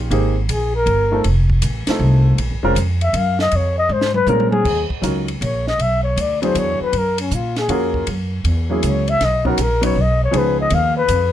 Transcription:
0.10 G#1 A#3 C4 D#4 G4 G#4, ride
0.49 A#1 G#4, hi-hat pedal, ride
0.75 A#4
0.86 G1, ride
1.11 A3 C4 D#4 F4 A4
1.24 F1, ride
1.50 kick
1.62 A1, hi-hat pedal, ride
1.87 A3 C4 D#4 F4 A4, muted upright bass stroke, snare, ride
1.99 C2
2.38 A#1, ride
2.51 G#1
2.63 F1 G#3 C4 C#4 F4 A#4
2.75 F2, hi-hat pedal, ride
3.01 E5, ride
3.13 F#2 F5, ride
3.39 D#5, snare
3.51 F2, ride
3.56 C#5
3.78 D#5
3.89 G#2 C5
4.01 snare
4.14 B4, high tom
4.26 A#2 G#3 C4 C#4 F4 A#4, hi-hat pedal, high tom
4.40 high tom
4.51 G#4, high tom
4.65 D#2, kick, crash
4.90 muted upright bass stroke, kick
5.01 C#2 F#3 C#4 D#4 F4 A#4, hi-hat pedal, ride
5.28 ride
5.41 A#1 C#5, ride
5.67 D#5, snare
5.78 B1 E5, ride
6.03 C#5
6.16 D2, hi-hat pedal, ride
6.21 D5
6.42 F#3 B3 D4 E4 G#4 C5, ride
6.55 E2 C#5, hi-hat pedal, ride
6.80 B4, muted upright bass stroke
6.93 F#2, ride
6.98 A#4
7.18 C#4, ride
7.31 A#2 F4, hi-hat pedal
7.56 G#4, snare, ride
7.68 F2 A#3 C#4 F4 F#4 G#4 A#4, ride
7.94 kick
8.07 F#2, ride
8.44 E2, ride
8.70 F#3 A#3 C#4 E4 G#4
8.83 C#2 C#5, hi-hat pedal, ride
9.08 E5, ride
9.20 B1, snare, ride
9.25 D#5
9.45 F#3 B3 C#4 D#4 F#4 A#4, kick
9.58 A#1 A#4, hi-hat pedal, ride
9.81 F#3 B3 C#4 D#4 B4, ride
9.85 C#5
9.96 B1
10.01 D#5
10.24 C#5
10.31 C#2 F3 B3 C#4 D#4 G#4, ride
10.38 B4
10.61 D#5
10.70 D#2 F5, ride
10.97 B4
11.08 F2, hi-hat pedal, ride

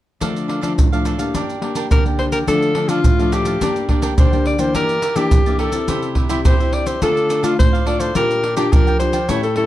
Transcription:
0.20 D3 F3 A3 D4 A4 D5 F5, pandeiro, maracas, surdo
0.36 pandeiro, maracas
0.48 D4 A4 D5 F5, pandeiro
0.61 F3 A3 D4 A4 D5 F5, pandeiro, maracas
0.78 A2, pandeiro, maracas, surdo
0.92 F3 A3 D4 A4 D5 F5, pandeiro, maracas
1.05 D4 A4 D5 F5, pandeiro, maracas
1.19 G3 A#3 D4 A4 D5 F5, pandeiro, maracas
1.35 G2 D4 A#4 D5 G5, pandeiro, maracas, surdo
1.50 pandeiro, maracas
1.61 G3 A#3 D4 A#4 D5 G5, pandeiro
1.75 D4 A#4 D5 G5, pandeiro, maracas
1.91 D3 D4 A#4 D5 G5, pandeiro, maracas, surdo
2.05 G3 A#3 D4 A#4 D5 G5, pandeiro, maracas
2.19 C5, pandeiro
2.32 A#4 D5 G5, pandeiro, maracas
2.47 D3 F3 A3 D4 A4 D5 F5, pandeiro, maracas, surdo
2.62 pandeiro, maracas
2.75 F3 A3 D4 A4 D5 F5, pandeiro
2.88 D4 F4 A4 D5 F5, pandeiro, maracas
3.04 A2, pandeiro, maracas, surdo
3.19 F3 A3 D4 A4 D5 F5, pandeiro, maracas
3.32 D4 G4 A4 D5 F5, pandeiro, maracas
3.45 A4 D5 F5, pandeiro, maracas
3.61 G2 G3 A#3 D4 A#4 D5 G5, pandeiro, maracas, surdo
3.76 pandeiro, maracas
3.89 G3 A#3 D4 A#4 D5 G5, pandeiro, surdo
4.02 D4 A#4 D5 G5, pandeiro, maracas
4.18 D3 D4 A#4 C5 D5 G5, pandeiro, maracas, surdo
4.32 G3 A#3 D4 A#4 D5 G5, pandeiro, maracas
4.46 D5, pandeiro
4.58 E3 A#3 D4 A#4 C5 D5 G5, pandeiro, maracas
4.74 G2 G4 A#4 D5 E5, pandeiro, maracas, surdo
4.89 pandeiro, maracas
5.02 G4 A#4 D5 E5, pandeiro, maracas
5.16 E3 A#3 D4 G4 A#4 D5 E5, pandeiro, maracas
5.31 G2, pandeiro, maracas, surdo
5.46 E3 A#3 D4 A#4 D5 E5, pandeiro, maracas
5.59 G4 A4 A#4 D5 E5, pandeiro
5.72 G3 C4 E4 A#4 D5 E5, pandeiro, maracas
5.88 C3 E4 G4 C5 E5, pandeiro, maracas, surdo
6.02 pandeiro, maracas
6.15 E4 G4 C5 E5, pandeiro, surdo
6.29 G3 C4 E4 G4 C5 E5, pandeiro, maracas
6.45 G2 E4 G4 C5 E5, pandeiro, maracas, surdo
6.60 G3 C4 E4 G4 C5 E5, pandeiro, maracas
6.73 D5, pandeiro
6.86 G4 C5 E5, pandeiro, maracas
7.01 D3 A3 D4 F4 A4 D5 F5, pandeiro, maracas, surdo
7.17 pandeiro, maracas
7.29 D4 A4 D5 F5, pandeiro, maracas
7.43 A3 D4 F4 A4 D5 F5, pandeiro, maracas
7.58 A2 C5, pandeiro, maracas, surdo
7.73 A4 D5 F5, pandeiro, maracas
7.86 A3 D4 F4 A4 D5 F5, pandeiro
7.99 A4 C5 D5 F5, pandeiro, maracas
8.15 A#2 G3 D4 F4 A#4 D5 G5, pandeiro, maracas, surdo
8.31 pandeiro, maracas
8.43 D4 A#4 D5 G5, pandeiro
8.56 G3 D4 F4 G4 A#4 D5 G5, pandeiro, maracas
8.72 F3 D4 A#4 D5 G5, pandeiro, maracas, surdo
8.87 A#4 D5 G5, pandeiro, maracas
8.99 G3 D4 F4 C5, pandeiro, maracas
9.13 A#4 D5 G5, pandeiro, maracas
9.29 A2 G3 C#4 E4 A4 C#5 G5, pandeiro, maracas, surdo
9.43 A4, pandeiro, maracas
9.56 G3 C#4 E4 A4 C#5 G5, pandeiro

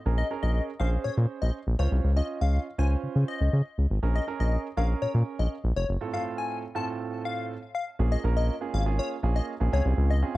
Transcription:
0.06 A#1 C#4 G#4 A#4
0.18 D#5
0.31 C#4 G#4 A#4
0.43 A#1 D#5
0.80 A#1 C#4 G#4 C5 F5
1.04 A#2 C#5
1.17 A#2
1.42 A#1 D#5
1.67 A#1
1.79 C#2 C#4 F4 C5 C#5
1.92 C2
2.04 C#2
2.16 C#4 F4 D#5
2.41 C#2 F5
2.78 C#2 C#4 F4 C5 G#5
3.03 C#3
3.16 C#3
3.28 D#5
3.41 C#2
3.53 C#3
3.78 C#2
3.90 G#1
4.03 A#1 C#4 G#4 A#4
4.15 D#5
4.27 C#4 G#4 A#4
4.40 A#1 D#5
4.77 A#1 C#4 G#4 A#4 F5
5.02 A#2 C#5
5.15 A#2
5.39 A#1 D#5
5.64 A#1
5.76 F1 C#5
5.89 F#1
6.01 A2 C4 F4 A4
6.13 A2 C4 F4 A4 F5
6.38 G#5
6.75 A2 C4 F4 A4 A5
7.25 F5
7.75 F5
7.99 A#1 A#3 C#4 F4 G#4
8.12 D#5
8.24 A#1 A#3 C#4 F4 A#4
8.37 D#5
8.61 A#3 C#4 F4 G#4
8.74 G#1 F5
8.86 A#3 C#4 F4 G#4
8.99 C#5
9.23 A#1 A#3 C#4 F4 G#4
9.36 D#5
9.60 A#1 A#3 C#4 F4 G#4
9.73 C#2 C4 C#4 F4 G#4 C#5
9.85 C2
9.97 C#2
10.10 D#5
10.22 C4 C#4 F4 G#4

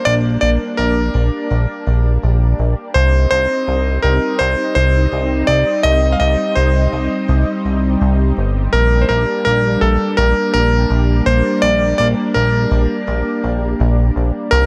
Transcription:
Already playing: G3 A#3 D4
0.05 A#1 D5
0.41 A#1 D5
0.77 A#1 A#4
1.15 A#1
1.51 A#1
1.87 A#1
2.23 A#1
2.60 A#1
2.94 C2 C4 D#4 C5
3.31 C2 C5
3.68 C2
4.02 C2 A#4
4.39 C2 C5
4.75 C2 C5
5.12 C2
5.47 C2 D5
5.83 C2 D#5
6.12 F5
6.20 C2 D#5
6.55 C2 C5
6.93 C2
7.29 C2
7.65 C2
8.02 C2
8.38 G1
8.73 A#1 A#3 D4 A#4
9.02 C5
9.09 A#1 A#4
9.45 A#1 A#4
9.81 A#1 A4
10.17 A#1 A#4
10.54 A#1 A#4
10.90 A#1
11.26 A#1 C5
11.62 A#1 D5
11.98 A#1 D5
12.34 A#1 A#4
12.72 A#1
13.08 A#1
13.44 A#1
13.80 A#1
14.16 A#1
14.51 C2 G3 C4 D#4 A#4

